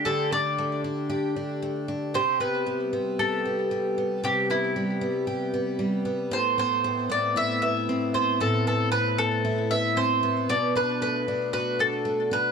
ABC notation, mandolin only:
X:1
M:4/4
L:1/8
Q:1/4=115
K:Ador
V:1 name="Mandolin"
A d2 z4 z | c B2 z A4 | G E3 z4 | c c2 d e e2 c |
A A B A2 e c2 | d B B2 B A2 B |]